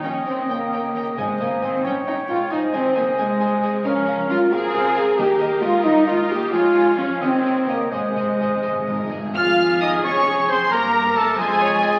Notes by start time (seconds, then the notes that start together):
Already playing: D#3 C#5 D#5 G5
0.03 D#2 F3 C#4 A#4 C#5 G5
0.26 D#2 D#3 C4 A#4 C#5 G5
0.49 D#2 C#3 A#3 A#4 C#5 G5
0.72 D#2 A#4 C#5 G5
0.94 D#2 A#4 C#5 G5
1.17 G#1 G#2 C3 G#3 C5 D#5 G#5
1.40 G#1 C#3 A#3 C5 D#5 G#5
1.63 G#1 D#3 C4 C5 D#5 G#5
1.84 A#1 G3 C#4 A#4 C#5 G5
2.07 A#1 G3 D#4 A#4 C#5 G5
2.29 A#1 G#3 F4 A#4 C#5 G5
2.51 C2 G#3 D#4 G#4 C5 D#5 G#5
2.74 C2 D#3 C4 G#4 C5 G#5
2.96 C2 C#3 A#3 G#4 C5 G#5
3.18 C2 C3 G#3 G#4 C5 G#5
3.40 C2 G#4 C5 G#5
3.63 C2 G#4 C5 G#5
3.85 C#2 F3 C#4 A#4 F5 A#5
4.07 C#2 A#4 F5
4.30 C#2 G#3 F4 A#4 F5
4.52 C#2 C4 G#4 A#4 F5
4.73 C#2 A#4 F5
4.96 C#2 A#4 F5
5.18 D#2 D#3 A#3 G4 A#4 D#5
5.39 D#2 A#4 D#5
5.61 D#2 G#3 F4 A#4 D#5
5.84 D#2 G3 D#4 A#4 D#5
6.07 D#2 G#3 F4 A#4 D#5
6.29 D#2 A#3 G4 A#4 D#5
6.51 F2 G#3 F4 G#4 C#5 F5 G#5
6.75 F2 G#4 C#5
6.98 F2 F3 C#4 G#4 C#5
7.20 D#2 D#3 C4 G4 C#5 D#5 G5
7.44 D#2 G4 C#5 D#5
7.67 D#2 C#3 A#3 G4 C#5 D#5
7.91 G#1 G#2 C3 G#3 G#4 C5 D#5 G#5
8.00 G#2
8.08 G#2
8.16 G#1 G#2 G#4 C5 D#5
8.24 G#2
8.32 G#2
8.39 G#1 G#2 G#4 C5 D#5
8.47 G#2
8.55 G#2
8.63 G#1 G#2 C5 D#5
8.71 G#2
8.79 G#2
8.87 G#1 G#2 A#4 D#5
8.95 G#2
9.02 G#2
9.10 G#1 G#2 G#4 D#5
9.18 G#2
9.26 G#2
9.35 F1 F2 F4 G#4 F5 G#5 F6
9.81 D#4 D#5 D#6
10.04 C#4 G#4 C#5 C#6
10.49 C4 C5 C6
10.71 G1 G2 A#3 G4 A#4 A#5
11.16 A3 A4 A5
11.37 F1 F2 G#3 F4 G#4 C5 G#5 C6
11.60 C#5 C#6
11.83 D#5 C6